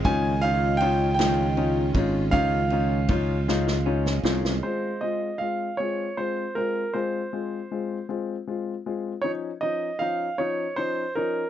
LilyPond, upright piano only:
\new Staff \with { instrumentName = "Upright piano" } { \time 6/8 \key f \minor \tempo 4. = 52 <des' ees' f'>8 <des' ees' f'>8 <des' ees' f'>8 <des' ees' f'>8 <des' ees' f'>8 <des' ees' f'>8 | <des' ees' f'>8 <des' ees' f'>8 <des' ees' f'>8 <des' ees' f'>8 <des' ees' f'>8 <des' ees' f'>8 | <aes c' f'>8 <aes c' f'>8 <aes c' f'>8 <aes c' f'>8 <aes c' f'>8 <aes c' f'>8 | <aes c' f'>8 <aes c' f'>8 <aes c' f'>8 <aes c' f'>8 <aes c' f'>8 <aes c' f'>8 |
<f des' ees'>8 <f des' ees'>8 <f des' ees'>8 <f des' ees'>8 <f des' ees'>8 <f des' ees'>8 | }